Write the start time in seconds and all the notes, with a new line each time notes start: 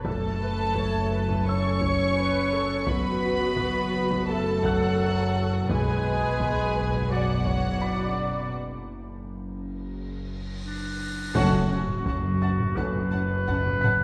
Already playing: A4 A5
0.04 F#1 F#2 A3 A4 A5, taiko
0.43 B4
0.75 C#5, taiko
1.13 B4
1.29 taiko
1.47 C#4 A4 C#5 C#6 E6
1.82 C#5, taiko
2.18 B4
2.53 A4
2.87 F#1 F#2 B3 F#4 B4 B5, taiko
3.57 taiko
4.11 taiko
4.28 A3 A4 A5
4.62 F#3 F#4 F#5 F#6, taiko
5.68 F#1 B1 B2 G#3 G#4 B4 G#5, taiko
6.40 taiko
6.93 taiko
7.10 F#3 F#4 D5 F#5 A6
7.46 C#5, taiko
7.81 D5 B5 B6
8.52 F#1, cymbal swell
10.66 D4
11.35 F#1 F#2 F#3 A3 C#4 F#4 A4 F#5 A5, taiko, impact
11.70 C#4 F#5 A5
11.88 taiko low-mid
12.06 F#1 F#2 C#4 F#5 A5, taiko
12.42 C#4 F#5 A5 A6
12.60 taiko low-mid
12.76 F#1 F#2 F#3 A3 C#4 A4 B4 F#5 A5, taiko
12.95 taiko low-mid
13.11 C#4 F#5 A5
13.47 F#1 F#2 C#4 F#5 A5, taiko
13.66 taiko low-mid
13.81 C#4 F#5 A5 B6, taiko low-mid